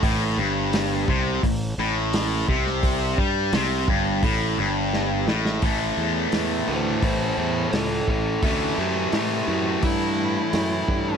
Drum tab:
HH |o---o---o---o---|o---o---o-------|o---o---o---o---|o---o---o---o---|
SD |----o-------o--o|----o-------o-oo|----o-------o---|----o-------o---|
BD |o-----o-o-----o-|o-o---o-o-------|o-------o-----o-|o-------o-----o-|